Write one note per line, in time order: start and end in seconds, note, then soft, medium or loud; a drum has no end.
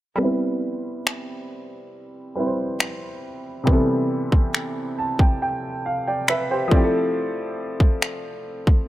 0.16 2.31 G3 medium
0.16 2.32 B3 medium
0.20 2.33 C4 medium
0.20 2.34 E4 medium
0.25 2.35 B4 medium
1.07 finger snap loud
2.35 3.64 G3 soft
2.35 3.68 C4 soft
2.35 3.68 E4 soft
2.35 2.39 B4 soft
2.40 2.45 B4 soft
2.47 3.72 C5 medium
2.80 finger snap loud
3.64 6.66 C3 medium
3.64 6.67 G3 medium
3.64 6.68 B3 medium
3.64 kick loud
3.69 6.69 E3 medium
3.69 6.68 C4 medium
3.69 5.83 A4 medium
4.32 kick medium
4.54 finger snap loud
4.99 5.18 A5 medium
5.19 5.40 G5 medium
5.19 kick medium
5.42 5.82 G5 medium
5.86 6.26 F5 medium
6.07 6.28 D5 soft
6.07 6.27 G5 medium
6.28 6.49 B4 medium
6.28 6.69 E5 medium
6.28 finger snap loud
6.51 6.76 G4 medium
6.51 6.92 C5 medium
6.68 8.88 F3 medium
6.68 8.88 A3 medium
6.68 kick loud
6.72 8.88 C4 medium
6.72 8.88 E4 medium
6.72 7.12 D5 medium
6.77 6.81 G4 medium
6.84 8.88 A4 medium
7.80 kick medium
8.02 finger snap loud
8.67 kick medium